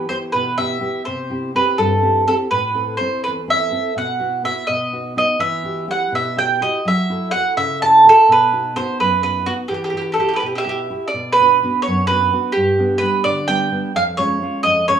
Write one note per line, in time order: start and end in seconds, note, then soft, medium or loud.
0.09 0.48 B3 soft
0.09 0.48 E4 soft
0.09 0.48 G4 soft
0.09 0.15 C5 medium
0.32 0.80 B2 medium
0.32 0.55 B4 medium
0.58 0.79 B3 soft
0.58 0.80 E4 soft
0.58 0.80 G4 soft
0.58 1.02 E5 medium
0.81 1.00 B3 soft
0.81 1.00 E4 soft
0.81 1.00 G4 soft
1.05 1.53 C3 medium
1.05 1.50 C5 medium
1.30 1.54 C4 soft
1.30 1.53 E4 soft
1.30 1.55 G4 soft
1.54 1.93 C4 soft
1.54 1.93 E4 soft
1.54 1.94 G4 soft
1.54 1.77 B4 medium
1.78 2.24 G2 medium
1.78 2.26 A4 medium
2.03 2.26 C4 soft
2.03 2.26 E4 soft
2.03 2.27 G4 soft
2.27 2.46 C4 soft
2.27 2.46 E4 soft
2.27 2.46 G4 soft
2.27 2.34 A4 medium
2.51 2.97 A2 medium
2.51 2.95 B4 medium
2.74 2.99 C4 soft
2.74 3.00 E4 soft
2.74 3.00 A4 soft
2.97 3.38 C4 soft
2.97 3.38 E4 soft
2.97 3.38 A4 soft
2.97 3.22 C5 medium
3.24 3.71 E2 medium
3.24 3.30 B4 medium
3.48 3.70 C4 soft
3.48 3.70 E4 soft
3.48 3.71 A4 soft
3.48 3.93 E5 medium
3.71 3.90 C4 soft
3.71 3.90 E4 soft
3.71 3.91 A4 soft
3.96 4.42 B2 medium
3.96 4.42 F#5 medium
4.19 4.42 B3 soft
4.19 4.43 E4 soft
4.19 4.43 F#4 soft
4.43 4.63 B3 soft
4.43 4.63 E4 soft
4.43 4.63 F#4 soft
4.43 4.69 E5 medium
4.67 5.15 B2 medium
4.67 5.12 D#5 medium
4.93 5.15 B3 soft
4.93 5.15 D#4 soft
4.93 5.16 F#4 soft
5.16 5.36 B3 soft
5.16 5.35 D#4 soft
5.16 5.36 F#4 soft
5.16 5.40 D#5 medium
5.39 5.86 E3 medium
5.39 5.85 E5 medium
5.64 5.87 E4 soft
5.64 5.87 F#4 soft
5.64 5.87 G4 soft
5.88 6.27 E4 soft
5.88 6.27 F#4 soft
5.88 6.27 G4 soft
5.88 6.14 F#5 medium
6.12 6.59 B2 medium
6.12 6.38 E5 medium
6.37 6.60 E4 soft
6.37 6.60 F#4 soft
6.37 6.60 G4 soft
6.37 6.60 G5 medium
6.61 6.80 E4 soft
6.61 6.80 F#4 soft
6.61 6.80 G4 soft
6.61 6.86 D#5 medium
6.85 7.31 F#3 medium
6.85 7.30 E5 medium
7.10 7.33 E4 soft
7.10 7.33 F#4 soft
7.10 7.34 A4 soft
7.31 7.71 E4 soft
7.31 7.71 F#4 soft
7.31 7.72 A4 soft
7.31 7.54 F#5 medium
7.57 8.02 C#3 medium
7.57 7.79 E5 medium
7.82 8.04 E4 soft
7.82 8.05 F#4 soft
7.82 8.05 A4 soft
7.82 8.03 A5 medium
8.05 8.23 E4 soft
8.05 8.24 F#4 soft
8.05 8.24 A4 soft
8.09 8.28 A4 medium
8.28 8.74 B2 medium
8.28 8.74 B4 medium
8.53 8.75 B3 soft
8.53 8.76 D#4 soft
8.53 8.76 F#4 soft
8.76 9.14 B3 soft
8.76 9.14 D#4 soft
8.76 9.14 F#4 soft
8.76 8.97 C5 medium
9.00 9.45 F#2 medium
9.00 9.21 B4 medium
9.23 9.45 B3 soft
9.23 9.45 D#4 soft
9.23 9.46 F#4 soft
9.23 9.45 B4 medium
9.46 9.65 B3 soft
9.46 9.65 D#4 soft
9.46 9.53 F#4 medium
9.46 9.65 F#4 soft
9.68 10.16 E3 medium
9.68 9.73 G4 medium
9.74 9.82 G4 soft
9.84 9.89 G4 medium
9.90 10.16 E4 soft
9.90 10.18 F#4 soft
9.90 9.96 G4 soft
9.90 10.18 G4 soft
9.97 10.00 G4 soft
10.02 10.11 G4 soft
10.12 10.19 G4 soft
10.12 10.36 A4 medium
10.18 10.56 E4 soft
10.18 10.56 F#4 soft
10.18 10.57 G4 soft
10.18 10.27 G4 soft
10.29 10.32 G4 soft
10.33 10.39 G4 soft
10.33 10.43 B4 medium
10.40 10.88 B2 medium
10.40 10.45 G4 soft
10.46 10.54 G4 soft
10.55 10.63 G4 soft
10.55 11.06 E5 medium
10.64 10.89 E4 soft
10.64 10.89 F#4 soft
10.64 10.68 G4 soft
10.64 10.90 G4 soft
10.69 10.78 G4 medium
10.90 11.09 E4 soft
10.90 11.09 F#4 soft
10.90 11.09 G4 soft
11.08 11.32 D5 medium
11.13 11.60 B2 medium
11.33 11.79 B4 medium
11.40 11.62 B3 soft
11.40 11.62 D4 soft
11.40 11.62 F#4 soft
11.63 12.00 B3 soft
11.63 12.00 D4 soft
11.63 12.00 F#4 soft
11.82 12.07 C#5 medium
11.87 12.32 F#2 medium
12.07 12.31 B3 soft
12.07 12.31 D4 soft
12.07 12.32 F#4 soft
12.07 12.51 B4 medium
12.32 12.51 B3 soft
12.32 12.51 D4 soft
12.32 12.51 F#4 soft
12.52 13.01 G2 medium
12.52 13.02 G4 medium
12.78 13.00 G3 soft
12.78 13.01 B3 soft
12.78 13.01 D4 medium
12.98 13.39 G3 soft
12.98 13.40 B3 soft
12.98 13.24 B4 medium
13.02 13.40 D4 soft
13.24 13.71 D3 medium
13.24 13.49 D5 medium
13.48 13.70 G3 soft
13.48 13.71 B3 soft
13.48 13.71 D4 soft
13.48 13.92 G5 medium
13.71 13.90 G3 soft
13.71 13.91 B3 soft
13.71 13.91 D4 medium
13.95 14.41 F2 medium
13.95 14.02 F5 medium
14.17 14.41 G#3 medium
14.17 14.40 C#4 soft
14.17 14.41 F4 medium
14.17 14.63 C#5 medium
14.42 14.80 G#3 soft
14.42 14.79 C#4 soft
14.42 14.80 F4 medium
14.63 15.00 F2 medium
14.63 14.88 D#5 medium
14.88 15.00 G#3 soft
14.88 15.00 C#4 soft
14.88 15.00 F4 soft
14.88 15.00 C#5 medium